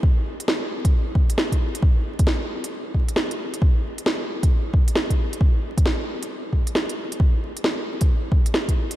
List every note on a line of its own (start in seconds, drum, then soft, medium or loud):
0.03 kick loud
0.40 closed hi-hat soft
0.48 snare loud
0.85 kick loud
0.85 closed hi-hat medium
1.15 kick medium
1.30 closed hi-hat medium
1.38 snare loud
1.52 kick medium
1.52 closed hi-hat soft
1.75 closed hi-hat soft
1.82 kick loud
2.19 kick loud
2.19 closed hi-hat soft
2.27 snare loud
2.64 closed hi-hat medium
2.94 kick medium
3.09 closed hi-hat medium
3.16 snare loud
3.31 closed hi-hat soft
3.54 closed hi-hat soft
3.62 kick loud
3.98 closed hi-hat soft
4.06 snare loud
4.43 kick loud
4.43 closed hi-hat soft
4.74 kick loud
4.88 closed hi-hat soft
4.96 snare loud
5.10 kick medium
5.10 closed hi-hat soft
5.33 closed hi-hat soft
5.41 kick loud
5.77 kick medium
5.77 closed hi-hat soft
5.86 snare medium
6.23 closed hi-hat soft
6.53 kick medium
6.67 closed hi-hat soft
6.75 snare medium
6.89 closed hi-hat soft
7.12 closed hi-hat soft
7.20 kick loud
7.57 closed hi-hat soft
7.64 snare medium
8.01 kick medium
8.01 closed hi-hat soft
8.32 kick medium
8.46 closed hi-hat soft
8.54 snare medium
8.68 kick medium
8.68 closed hi-hat soft
8.91 closed hi-hat soft